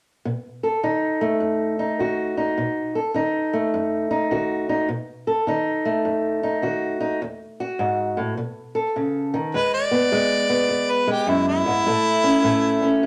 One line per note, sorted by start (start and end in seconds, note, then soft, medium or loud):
0.25 0.79 B2 medium
0.63 2.00 A4 soft
0.83 1.37 D#3 medium
0.83 1.79 D#4 medium
1.21 2.61 A3 soft
1.40 1.95 F#2 medium
1.79 2.37 D#4 soft
1.99 2.53 D#3 soft
1.99 2.95 F#4 soft
2.37 2.98 D#4 soft
2.58 3.12 B2 medium
2.95 4.31 A4 soft
3.14 3.69 D#3 medium
3.14 4.09 D#4 medium
3.53 4.88 A3 soft
3.74 4.28 F#2 medium
4.11 4.68 D#4 medium
4.31 4.86 D#3 soft
4.31 4.88 F#4 soft
4.69 4.88 D#4 medium
4.89 5.43 B2 medium
5.27 6.63 A4 soft
5.47 6.02 D#3 medium
5.47 6.42 D#4 medium
5.85 7.20 A3 medium
6.05 6.60 F#2 medium
6.43 6.99 D#4 medium
6.62 7.17 D#3 soft
6.62 7.19 F#4 soft
7.00 7.19 D#4 medium
7.22 7.76 E2 medium
7.60 8.36 F#4 soft
7.79 8.17 G#2 medium
8.17 8.37 A2 medium
8.37 8.92 B2 medium
8.75 9.51 A4 medium
8.96 9.33 C#3 soft
9.34 9.54 D#3 medium
9.54 10.08 E2 medium
9.54 10.11 G#3 medium
9.54 9.73 B4 medium
9.74 10.92 D5 medium
9.91 10.48 B3 medium
10.12 10.66 E2 medium
10.12 11.06 G#3 medium
10.49 11.86 B3 medium
10.68 11.23 E2 medium
10.90 11.09 B4 medium
11.07 11.84 G#3 medium
11.07 11.30 G4 medium
11.27 11.65 F#2 medium
11.27 11.47 E4 medium
11.48 13.06 E4 loud
11.66 11.86 G#2 medium
11.87 12.40 A2 medium
11.87 12.44 A3 medium
12.24 12.81 C#4 medium
12.44 12.98 A2 medium
12.44 13.06 A3 medium
12.82 13.06 C#4 medium
13.03 13.06 A2 medium